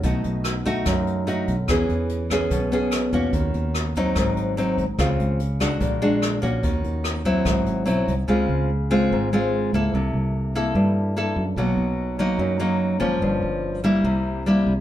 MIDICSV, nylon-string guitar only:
0, 0, Header, 1, 2, 480
1, 0, Start_track
1, 0, Tempo, 411805
1, 42, Time_signature, 4, 2, 24, 8
1, 17257, End_track
2, 0, Start_track
2, 0, Title_t, "Nylon-string guitar"
2, 0, Program_c, 0, 24
2, 39, Note_on_c, 0, 47, 48
2, 45, Note_on_c, 0, 57, 45
2, 49, Note_on_c, 0, 63, 53
2, 54, Note_on_c, 0, 66, 58
2, 725, Note_off_c, 0, 63, 0
2, 726, Note_off_c, 0, 57, 0
2, 730, Note_off_c, 0, 66, 0
2, 764, Note_on_c, 0, 57, 70
2, 771, Note_on_c, 0, 63, 67
2, 775, Note_on_c, 0, 66, 66
2, 976, Note_off_c, 0, 47, 0
2, 1003, Note_on_c, 0, 42, 57
2, 1444, Note_off_c, 0, 57, 0
2, 1448, Note_off_c, 0, 66, 0
2, 1449, Note_off_c, 0, 63, 0
2, 1479, Note_on_c, 0, 57, 51
2, 1482, Note_on_c, 0, 63, 59
2, 1493, Note_on_c, 0, 66, 58
2, 1790, Note_off_c, 0, 57, 0
2, 1790, Note_off_c, 0, 63, 0
2, 1797, Note_off_c, 0, 66, 0
2, 1939, Note_off_c, 0, 42, 0
2, 1970, Note_on_c, 0, 52, 49
2, 1972, Note_on_c, 0, 59, 47
2, 1976, Note_on_c, 0, 68, 57
2, 1980, Note_on_c, 0, 61, 51
2, 2648, Note_off_c, 0, 59, 0
2, 2650, Note_off_c, 0, 61, 0
2, 2651, Note_off_c, 0, 68, 0
2, 2696, Note_on_c, 0, 59, 60
2, 2698, Note_on_c, 0, 61, 69
2, 2703, Note_on_c, 0, 68, 69
2, 2904, Note_off_c, 0, 52, 0
2, 2929, Note_on_c, 0, 47, 55
2, 3132, Note_off_c, 0, 59, 0
2, 3132, Note_off_c, 0, 61, 0
2, 3134, Note_off_c, 0, 68, 0
2, 3170, Note_on_c, 0, 59, 57
2, 3179, Note_on_c, 0, 61, 56
2, 3184, Note_on_c, 0, 68, 68
2, 3608, Note_off_c, 0, 59, 0
2, 3613, Note_off_c, 0, 61, 0
2, 3615, Note_off_c, 0, 68, 0
2, 3646, Note_on_c, 0, 58, 54
2, 3651, Note_on_c, 0, 61, 57
2, 3658, Note_on_c, 0, 66, 63
2, 3863, Note_off_c, 0, 47, 0
2, 3890, Note_on_c, 0, 51, 47
2, 4567, Note_off_c, 0, 58, 0
2, 4570, Note_off_c, 0, 61, 0
2, 4572, Note_off_c, 0, 66, 0
2, 4619, Note_off_c, 0, 51, 0
2, 4624, Note_on_c, 0, 54, 58
2, 4628, Note_on_c, 0, 60, 64
2, 4630, Note_on_c, 0, 63, 79
2, 4866, Note_on_c, 0, 44, 54
2, 5297, Note_off_c, 0, 54, 0
2, 5298, Note_off_c, 0, 60, 0
2, 5300, Note_off_c, 0, 63, 0
2, 5329, Note_on_c, 0, 54, 55
2, 5340, Note_on_c, 0, 60, 54
2, 5342, Note_on_c, 0, 63, 57
2, 5637, Note_off_c, 0, 54, 0
2, 5642, Note_off_c, 0, 63, 0
2, 5643, Note_off_c, 0, 60, 0
2, 5793, Note_off_c, 0, 44, 0
2, 5812, Note_on_c, 0, 49, 47
2, 5812, Note_on_c, 0, 56, 48
2, 5816, Note_on_c, 0, 60, 54
2, 5818, Note_on_c, 0, 65, 50
2, 6287, Note_off_c, 0, 56, 0
2, 6287, Note_off_c, 0, 60, 0
2, 6290, Note_off_c, 0, 65, 0
2, 6529, Note_on_c, 0, 56, 63
2, 6535, Note_on_c, 0, 62, 59
2, 6540, Note_on_c, 0, 66, 70
2, 6747, Note_off_c, 0, 49, 0
2, 6766, Note_on_c, 0, 46, 56
2, 6970, Note_off_c, 0, 56, 0
2, 6974, Note_off_c, 0, 62, 0
2, 6974, Note_off_c, 0, 66, 0
2, 7014, Note_on_c, 0, 56, 68
2, 7019, Note_on_c, 0, 62, 65
2, 7023, Note_on_c, 0, 66, 66
2, 7454, Note_off_c, 0, 56, 0
2, 7455, Note_off_c, 0, 62, 0
2, 7455, Note_off_c, 0, 66, 0
2, 7481, Note_on_c, 0, 58, 62
2, 7489, Note_on_c, 0, 61, 58
2, 7494, Note_on_c, 0, 66, 61
2, 7704, Note_off_c, 0, 46, 0
2, 7732, Note_on_c, 0, 51, 51
2, 8407, Note_off_c, 0, 58, 0
2, 8412, Note_off_c, 0, 61, 0
2, 8413, Note_off_c, 0, 66, 0
2, 8449, Note_off_c, 0, 51, 0
2, 8454, Note_on_c, 0, 54, 61
2, 8457, Note_on_c, 0, 60, 65
2, 8464, Note_on_c, 0, 64, 70
2, 8686, Note_on_c, 0, 44, 56
2, 9134, Note_off_c, 0, 54, 0
2, 9136, Note_off_c, 0, 60, 0
2, 9137, Note_off_c, 0, 64, 0
2, 9156, Note_on_c, 0, 54, 56
2, 9163, Note_on_c, 0, 60, 55
2, 9168, Note_on_c, 0, 64, 53
2, 9472, Note_off_c, 0, 54, 0
2, 9476, Note_off_c, 0, 60, 0
2, 9478, Note_off_c, 0, 64, 0
2, 9624, Note_off_c, 0, 44, 0
2, 9648, Note_on_c, 0, 49, 50
2, 9654, Note_on_c, 0, 56, 50
2, 9657, Note_on_c, 0, 60, 51
2, 9664, Note_on_c, 0, 65, 59
2, 10129, Note_off_c, 0, 60, 0
2, 10130, Note_off_c, 0, 56, 0
2, 10135, Note_off_c, 0, 65, 0
2, 10381, Note_on_c, 0, 56, 65
2, 10385, Note_on_c, 0, 60, 60
2, 10391, Note_on_c, 0, 65, 71
2, 10586, Note_off_c, 0, 49, 0
2, 10637, Note_on_c, 0, 44, 51
2, 10818, Note_off_c, 0, 56, 0
2, 10820, Note_off_c, 0, 60, 0
2, 10821, Note_off_c, 0, 65, 0
2, 10873, Note_on_c, 0, 56, 57
2, 10881, Note_on_c, 0, 60, 61
2, 10886, Note_on_c, 0, 65, 69
2, 11304, Note_off_c, 0, 56, 0
2, 11306, Note_off_c, 0, 60, 0
2, 11310, Note_off_c, 0, 65, 0
2, 11354, Note_on_c, 0, 58, 63
2, 11358, Note_on_c, 0, 64, 54
2, 11367, Note_on_c, 0, 69, 61
2, 11560, Note_off_c, 0, 44, 0
2, 11596, Note_on_c, 0, 48, 52
2, 12265, Note_off_c, 0, 58, 0
2, 12265, Note_off_c, 0, 64, 0
2, 12266, Note_off_c, 0, 69, 0
2, 12302, Note_on_c, 0, 58, 59
2, 12305, Note_on_c, 0, 64, 67
2, 12312, Note_on_c, 0, 69, 70
2, 12519, Note_off_c, 0, 48, 0
2, 12535, Note_on_c, 0, 43, 55
2, 12978, Note_off_c, 0, 64, 0
2, 12979, Note_off_c, 0, 58, 0
2, 12980, Note_off_c, 0, 69, 0
2, 13014, Note_on_c, 0, 58, 50
2, 13019, Note_on_c, 0, 64, 55
2, 13027, Note_on_c, 0, 69, 54
2, 13321, Note_off_c, 0, 58, 0
2, 13324, Note_off_c, 0, 64, 0
2, 13327, Note_off_c, 0, 69, 0
2, 13468, Note_off_c, 0, 43, 0
2, 13491, Note_on_c, 0, 47, 50
2, 13497, Note_on_c, 0, 54, 50
2, 13497, Note_on_c, 0, 58, 49
2, 13503, Note_on_c, 0, 63, 54
2, 14174, Note_off_c, 0, 54, 0
2, 14175, Note_off_c, 0, 58, 0
2, 14177, Note_off_c, 0, 63, 0
2, 14209, Note_on_c, 0, 54, 65
2, 14216, Note_on_c, 0, 58, 67
2, 14224, Note_on_c, 0, 63, 71
2, 14427, Note_off_c, 0, 47, 0
2, 14446, Note_on_c, 0, 42, 57
2, 14651, Note_off_c, 0, 54, 0
2, 14655, Note_off_c, 0, 58, 0
2, 14656, Note_off_c, 0, 63, 0
2, 14681, Note_on_c, 0, 54, 57
2, 14687, Note_on_c, 0, 58, 65
2, 14687, Note_on_c, 0, 63, 63
2, 15127, Note_off_c, 0, 54, 0
2, 15128, Note_off_c, 0, 58, 0
2, 15129, Note_off_c, 0, 63, 0
2, 15150, Note_on_c, 0, 53, 60
2, 15155, Note_on_c, 0, 58, 58
2, 15157, Note_on_c, 0, 61, 57
2, 15383, Note_off_c, 0, 42, 0
2, 15410, Note_on_c, 0, 43, 48
2, 16080, Note_off_c, 0, 53, 0
2, 16083, Note_off_c, 0, 58, 0
2, 16083, Note_off_c, 0, 61, 0
2, 16128, Note_on_c, 0, 55, 62
2, 16136, Note_on_c, 0, 64, 75
2, 16138, Note_on_c, 0, 58, 67
2, 16345, Note_off_c, 0, 43, 0
2, 16372, Note_on_c, 0, 48, 59
2, 16809, Note_off_c, 0, 55, 0
2, 16813, Note_off_c, 0, 64, 0
2, 16814, Note_off_c, 0, 58, 0
2, 16858, Note_on_c, 0, 55, 58
2, 16867, Note_on_c, 0, 58, 55
2, 16876, Note_on_c, 0, 64, 54
2, 17162, Note_off_c, 0, 55, 0
2, 17166, Note_off_c, 0, 58, 0
2, 17171, Note_off_c, 0, 64, 0
2, 17257, Note_off_c, 0, 48, 0
2, 17257, End_track
0, 0, End_of_file